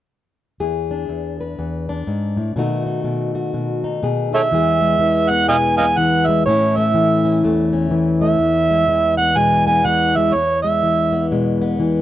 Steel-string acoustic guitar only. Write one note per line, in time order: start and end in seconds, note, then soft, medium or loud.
0.60 1.08 E2 medium
0.60 1.39 G#4 medium
0.91 1.88 D4 soft
1.09 1.57 E2 medium
1.41 2.59 B4 soft
1.59 2.07 E2 medium
1.89 2.54 D4 medium
2.07 2.37 G#2 medium
2.37 2.55 A2 medium
2.56 3.03 B2 medium
2.56 4.49 D#3 medium
2.56 4.49 A3 medium
2.56 2.85 D#4 medium
2.56 3.34 F#4 medium
2.86 3.83 D#4 medium
3.04 3.53 B2 medium
3.35 4.02 F#4 medium
3.54 4.02 B2 medium
3.84 4.32 D#4 medium
4.03 4.49 B2 medium
4.03 4.49 G#4 medium
4.34 4.49 D#4 soft
4.51 6.45 E2 medium
4.51 4.99 E3 medium
4.51 4.80 G#3 medium
4.51 5.29 B3 medium
4.51 6.44 G#4 medium
4.81 5.48 G#3 medium
4.99 5.97 E3 medium
5.31 5.78 B3 medium
5.49 5.97 B2 medium
5.49 6.27 G#3 medium
5.80 6.46 B3 medium
5.97 6.47 E3 medium
6.29 6.44 G#3 medium
6.46 7.42 A2 medium
6.46 6.94 E3 medium
6.46 6.76 A3 medium
6.46 7.24 C#4 medium
6.46 10.35 E4 medium
6.78 7.43 A3 soft
6.94 7.90 E3 medium
7.25 7.72 C#4 medium
7.44 8.38 E2 medium
7.44 8.20 A3 medium
7.73 8.37 C#4 medium
7.91 8.88 E3 medium
8.21 8.37 A3 medium
8.39 10.33 E2 medium
8.70 9.36 G#3 medium
8.88 9.84 E3 medium
9.19 9.67 B3 medium
9.36 9.84 B2 medium
9.36 10.15 G#3 medium
9.67 11.12 B3 medium
9.85 10.31 E3 medium
10.17 10.32 G#3 medium
10.35 12.02 E2 medium
10.64 11.31 G#3 soft
10.83 11.78 E3 medium
11.13 11.61 B3 medium
11.31 11.79 B2 medium
11.31 12.02 G#3 medium
11.62 12.02 B3 medium
11.79 12.02 E3 medium